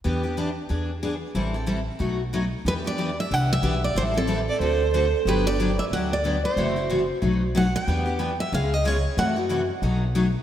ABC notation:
X:1
M:4/4
L:1/16
Q:"Swing" 1/4=184
K:Em
V:1 name="Steel-string acoustic guitar"
z16 | z16 | B2 d4 e2 f2 e4 d2 | c2 A12 z2 |
B2 d4 e2 f2 d4 c2- | c6 z6 f2 g2- | g6 e2 ^e2 ^d2 ^c4 | f4 z12 |]
V:2 name="Violin"
z16 | z16 | z16 | z6 d2 c4 c3 z |
z16 | z16 | z16 | z16 |]
V:3 name="Steel-string acoustic guitar"
[E,B,DG]2 [B,DG]2 [E,B,DG]2 z2 [E,B,D^G]2 z2 [E,B,DG]2 z2 | [E,G,CEA]2 [CEA]2 [E,G,CEA]2 z2 [B,,F,A,^DF]2 z2 [B,,F,A,DF]2 z2 | [E,B,DG]2 [B,DG]2 [E,B,DG]2 z2 [E,B,DG]2 z2 [E,B,DG]2 z2 | [E,G,CEA]2 [CEA]2 [E,G,CEA]2 z2 [D,A,CFA]2 z2 [D,A,CFA]2 z2 |
[D,F,B,DG]2 [B,DG]2 [D,F,B,DG]2 z2 [D,F,B,DG]2 z2 [D,F,B,DG]2 z2 | [C,E,A,EF]2 [A,EF]2 [C,E,A,EF]2 z2 [B,,F,A,^DF]2 z2 [B,,F,A,DF]2 z2 | [E,B,DG]2 [B,DG]2 [E,B,DG]2 z2 [^C,^G,B,^E^G]2 z2 [C,G,B,EG]2 z2 | [C,E,A,EF]2 [A,EF]2 [C,E,A,EF]2 z2 [B,,F,A,^DF]2 z2 [B,,F,A,DF]2 z2 |]
V:4 name="Upright bass" clef=bass
E,,8 E,,8 | A,,,8 B,,,8 | E,,8 C,,4 B,,,4 | A,,,8 D,,8 |
G,,,8 D,,8 | F,,,8 B,,,8 | E,,8 ^C,,8 | F,,8 B,,,8 |]